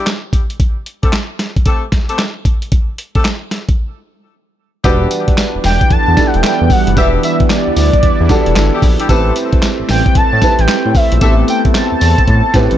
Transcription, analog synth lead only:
5.65 5.93 G5 loud
5.92 6.28 A5 loud
6.27 6.37 F#5 medium
6.35 6.73 G5 loud
6.71 6.97 F#5 loud
6.98 7.10 E5 loud
7.24 7.36 E5 loud
7.51 8.79 D5 loud
9.90 10.18 G5 loud
10.16 10.62 A5 loud
10.60 10.98 G5 loud
10.96 11.22 E5 loud
11.23 11.34 E5 loud
11.50 11.61 G5 loud
11.76 12.78 A5 loud

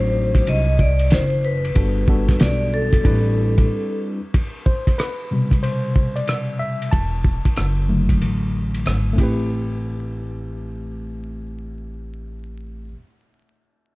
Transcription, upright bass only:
0.00 0.44 A1 loud
0.47 1.13 C2 medium
1.11 1.73 F#1 medium
1.76 2.26 G1 medium
2.29 muted upright bass stroke soft
2.41 3.02 B1 medium
3.05 3.66 A1 loud
6.93 7.43 E1 loud
7.45 muted upright bass stroke soft
7.57 8.18 F#1 medium
8.22 8.83 A1 medium
8.86 9.17 G#1 medium
9.18 12.93 A1 medium

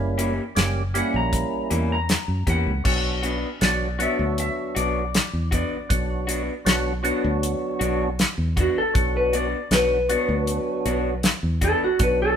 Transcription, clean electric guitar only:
0.18 0.42 E3 medium
0.18 0.42 A#3 medium
0.18 0.42 C#4 medium
0.18 0.41 G4 medium
0.94 1.19 E3 soft
0.94 1.18 A#3 medium
0.94 1.18 C#4 medium
0.94 1.18 G4 medium
1.70 1.95 E3 medium
1.70 1.95 A#3 medium
1.70 1.94 C#4 medium
1.70 1.94 G4 medium
2.47 2.71 E3 medium
2.47 2.71 A#3 medium
2.47 2.70 C#4 medium
2.47 2.70 G4 medium
3.23 3.47 B3 medium
3.23 3.47 D4 medium
3.23 3.46 F#4 medium
3.99 4.23 B3 medium
3.99 4.23 D4 medium
3.99 4.22 F#4 medium
4.75 4.99 B3 medium
4.75 4.99 D4 medium
4.75 4.99 F#4 medium
5.51 5.76 B3 medium
5.51 5.75 D4 medium
5.51 5.75 F#4 medium
6.27 6.52 B3 medium
6.27 6.51 D4 medium
6.27 6.51 F#4 medium
7.04 7.28 B3 medium
7.04 7.28 D4 medium
7.04 7.27 F#4 medium
7.79 8.04 B3 medium
7.79 8.04 D4 medium
7.79 8.03 F#4 medium
8.57 8.81 B3 medium
8.57 8.80 D4 medium
8.57 8.80 F#4 medium
9.33 9.57 B3 medium
9.33 9.57 D4 medium
9.33 9.56 F#4 medium
10.09 10.34 B3 medium
10.09 10.33 D4 medium
10.09 10.33 F#4 medium
10.86 11.10 B3 medium
10.86 11.09 D4 medium
10.86 11.09 F#4 medium
11.61 11.86 B3 medium
11.61 11.85 D4 medium
11.61 11.85 F#4 medium

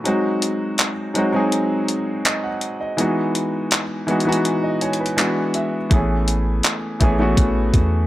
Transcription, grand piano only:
0.04 0.89 F#3 medium
0.04 0.90 G#3 medium
0.04 0.90 C4 medium
0.04 0.91 D#4 medium
0.04 0.91 F#4 medium
1.14 1.29 F#3 medium
1.14 1.29 G#3 medium
1.14 1.30 C4 medium
1.14 1.30 D#4 medium
1.14 1.31 F#4 medium
1.32 2.46 F#3 medium
1.32 2.46 G#3 medium
1.32 2.47 C4 medium
1.32 2.47 D#4 medium
1.32 2.48 G#4 medium
2.26 2.43 D#5 medium
2.44 2.78 F#5 medium
2.81 3.15 D#5 medium
2.97 3.82 E3 medium
2.97 3.83 G#3 medium
2.97 3.83 B3 medium
2.97 3.84 D#4 medium
2.97 3.84 F#4 medium
4.07 4.21 E3 medium
4.07 4.22 G#3 medium
4.07 4.23 B3 medium
4.07 4.23 D#4 medium
4.07 4.23 F#4 medium
4.25 5.15 E3 medium
4.25 5.16 G#3 medium
4.25 5.17 B3 medium
4.25 5.18 D#4 medium
4.25 5.19 F#4 loud
4.64 4.81 D#5 medium
4.82 4.99 C#5 medium
4.82 5.16 G#5 medium
5.00 5.35 B4 medium
5.17 5.76 E3 medium
5.17 5.76 G#3 medium
5.17 5.77 B3 medium
5.17 5.77 D4 medium
5.17 5.78 F#4 medium
5.17 5.52 F#5 medium
5.55 5.89 E5 medium
5.90 6.75 E3 medium
5.90 6.75 A3 medium
5.90 6.76 B3 medium
5.90 6.76 C#4 medium
5.90 6.77 G#4 medium
7.00 7.14 E3 medium
7.00 7.15 A3 medium
7.00 7.15 B3 medium
7.00 7.16 C#4 medium
7.00 7.16 G#4 medium
7.18 8.07 E3 medium
7.18 8.07 A3 medium
7.18 8.07 B3 medium
7.18 8.07 C#4 medium
7.18 8.07 F#4 medium

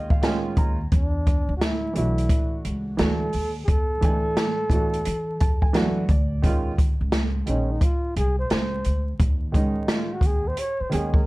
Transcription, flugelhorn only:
0.95 1.53 D4 medium
1.57 1.64 F#4 medium
1.62 1.96 E4 loud
1.97 2.61 E4 loud
3.00 3.59 A4 loud
3.64 3.71 G#4 medium
3.70 6.10 A4 loud
7.49 7.73 C#4 medium
7.71 7.85 D#4 medium
7.83 8.16 F4 medium
8.17 8.37 G#4 medium
8.39 8.50 C5 medium
8.52 9.16 C5 medium
9.91 10.15 F4 medium
10.13 10.28 F#4 medium
10.26 10.49 G#4 medium
10.48 10.61 C5 medium
10.60 10.82 C#5 loud
10.81 10.95 C5 medium
10.93 11.17 G#4 medium
11.15 11.27 A#4 medium

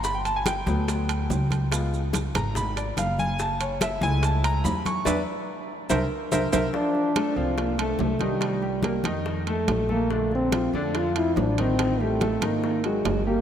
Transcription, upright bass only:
0.00 0.61 G1 medium
0.66 1.26 D2 loud
1.30 2.28 C#2 loud
2.35 2.93 G#1 loud
2.97 3.96 F#1 medium
4.01 4.60 C#2 loud
4.64 5.03 E2 loud
5.06 5.22 E2 loud
5.90 6.06 C2 loud
6.32 6.48 C2 medium
6.53 6.69 C2 medium
7.36 7.96 C2 medium
7.99 8.99 C2 medium
9.04 9.64 F2 loud
9.68 10.67 A#1 medium
10.73 11.33 F2 medium
11.36 12.35 A1 medium
12.41 13.01 G#1 medium
13.05 13.41 G1 medium

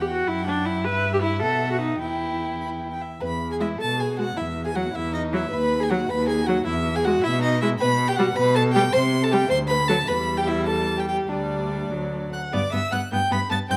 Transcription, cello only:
0.00 0.27 E2 medium
0.29 0.86 F#2 medium
0.85 1.44 G2 medium
1.43 2.01 B2 medium
2.01 3.00 E2 medium
3.21 3.70 E2 medium
3.80 4.28 B2 medium
4.37 4.85 E2 medium
4.95 5.43 E2 medium
5.52 6.00 D#2 medium
6.09 6.57 D#2 medium
6.66 7.14 E2 medium
7.24 7.71 B2 loud
7.81 8.27 B2 loud
8.37 8.84 B2 loud
8.94 9.41 C3 loud
9.50 9.99 D2 medium
10.08 11.25 E2 medium
11.29 11.90 D2 medium
11.92 12.32 D2 medium
12.54 12.62 G2 medium
12.73 12.81 G2 medium
12.93 13.00 G2 medium
13.13 13.20 G2 medium
13.32 13.39 G2 medium
13.51 13.58 G2 medium
13.70 13.77 G2 medium

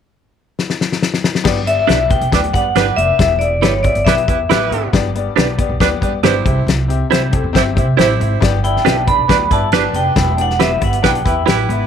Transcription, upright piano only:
1.44 2.06 G2 medium
1.44 1.59 B3 loud
1.44 1.59 G4 medium
1.44 1.60 D5 loud
1.66 1.81 B3 medium
1.66 1.81 G4 medium
1.66 1.82 D5 medium
1.88 2.03 B3 medium
1.88 2.03 G4 soft
1.88 2.04 D5 medium
2.09 2.24 B3 medium
2.09 2.25 G4 medium
2.09 2.25 E5 medium
2.32 2.46 B3 medium
2.32 2.47 G4 medium
2.32 2.47 D5 medium
2.54 2.68 B3 medium
2.54 2.69 G4 medium
2.54 2.69 D5 medium
2.75 2.90 B3 medium
2.75 2.90 G4 medium
2.75 2.91 D5 medium
2.96 3.11 B3 medium
2.96 3.12 G4 medium
2.96 3.13 D5 medium
3.19 3.81 E3 medium
3.19 3.33 B3 medium
3.19 3.34 G4 medium
3.19 3.34 E5 medium
3.40 3.55 B3 medium
3.40 3.56 G4 medium
3.40 3.56 E5 medium
3.62 3.77 B3 medium
3.62 3.77 G4 medium
3.62 3.78 E5 medium
3.84 3.99 B3 medium
3.84 3.99 G4 medium
3.84 3.99 E5 medium
4.06 4.21 B3 medium
4.06 4.21 G4 medium
4.06 4.21 B4 loud
4.27 4.42 B3 medium
4.27 4.42 G4 medium
4.27 4.43 E5 medium
4.49 4.64 B3 medium
4.49 4.65 G4 medium
4.49 4.65 G5 medium
4.71 4.86 B3 medium
4.71 4.86 G4 medium
4.71 4.87 E5 medium
4.93 5.55 G2 medium
4.93 5.08 B3 loud
4.93 5.08 G4 medium
4.93 5.09 D5 loud
5.15 5.30 B3 medium
5.15 5.30 G4 medium
5.15 5.30 D5 medium
5.36 5.51 B3 medium
5.36 5.52 G4 medium
5.36 5.52 D5 medium
5.58 5.73 B3 medium
5.58 5.74 G4 medium
5.58 5.74 D5 medium
5.80 5.95 B3 loud
5.80 5.95 G4 medium
5.80 5.96 D5 loud
6.01 6.16 B3 medium
6.01 6.17 G4 medium
6.01 6.17 D5 medium
6.23 6.38 B3 medium
6.23 6.39 G4 medium
6.23 6.39 D5 medium
6.45 7.07 C3 medium
6.45 6.80 C4 medium
6.45 6.81 G4 medium
6.45 6.81 E5 medium
6.88 7.04 C4 medium
6.88 7.04 G4 medium
6.88 7.04 E5 medium
7.10 7.25 C4 medium
7.10 7.26 G4 medium
7.10 7.26 E5 medium
7.31 7.47 C4 medium
7.31 7.47 G4 medium
7.31 7.48 A4 medium
7.53 7.69 C4 loud
7.53 7.69 G4 medium
7.53 7.69 E5 loud
7.75 7.90 C4 medium
7.75 7.91 G4 medium
7.75 7.91 E5 medium
7.97 8.13 C4 medium
7.97 8.13 G4 medium
7.97 8.13 E5 medium
8.19 8.34 C4 medium
8.19 8.35 G4 medium
8.19 8.35 E5 medium
8.40 9.03 G2 medium
8.40 8.56 B3 loud
8.40 8.56 G4 medium
8.40 8.57 D5 loud
8.63 8.78 B3 medium
8.63 8.78 G4 medium
8.63 8.79 D5 medium
8.84 9.00 B3 medium
8.84 9.00 G4 medium
8.84 9.00 E5 medium
9.06 9.21 B3 medium
9.06 9.22 G4 medium
9.06 9.22 D5 medium
9.28 9.43 B3 medium
9.28 9.44 G4 medium
9.28 9.44 D5 medium
9.50 9.65 B3 medium
9.50 9.66 G4 medium
9.50 9.66 D5 medium
9.72 9.87 B3 medium
9.72 9.88 G4 medium
9.72 9.88 D5 medium
9.95 10.09 B3 medium
9.95 10.10 G4 soft
9.95 10.10 D5 medium
10.16 10.78 E3 medium
10.16 10.31 B3 medium
10.16 10.31 G4 medium
10.16 10.32 E5 medium
10.38 10.53 B3 medium
10.38 10.53 G4 medium
10.38 10.54 D5 medium
10.59 10.74 B3 medium
10.59 10.75 G4 medium
10.59 10.75 E5 medium
10.81 10.96 B3 medium
10.81 10.96 G4 medium
10.81 10.97 E5 medium
11.03 11.18 B3 medium
11.03 11.18 G4 medium
11.03 11.19 F#5 medium
11.25 11.40 B3 medium
11.25 11.40 G4 medium
11.25 11.41 E5 medium
11.46 11.61 B3 medium
11.46 11.62 G4 medium
11.46 11.62 E5 medium
11.69 11.83 B3 medium
11.69 11.84 G4 medium
11.69 11.85 E5 medium

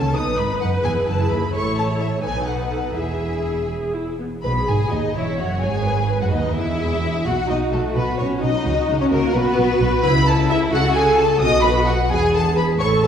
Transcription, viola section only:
0.00 0.15 C#4 medium
0.00 0.16 A4 medium
0.16 0.83 D#4 medium
0.16 0.83 B4 medium
0.84 1.52 E4 medium
0.84 1.54 G#4 medium
1.53 2.20 E4 medium
1.53 2.20 A4 medium
2.24 2.95 D#4 soft
2.24 2.95 A4 soft
2.97 3.66 E4 soft
2.97 3.66 G#4 soft
3.70 3.93 G#4 medium
3.94 4.20 E4 medium
4.20 4.28 B3 soft
4.44 5.12 G#4 medium
5.15 5.84 C#5 medium
5.86 6.56 B4 medium
6.55 7.24 G#4 medium
7.25 8.64 F#4 medium
8.66 10.01 F#4 medium
10.04 10.73 E4 medium
10.72 11.41 A4 medium
11.42 12.11 F#4 medium
12.12 12.79 G#4 medium
12.81 13.07 A4 medium

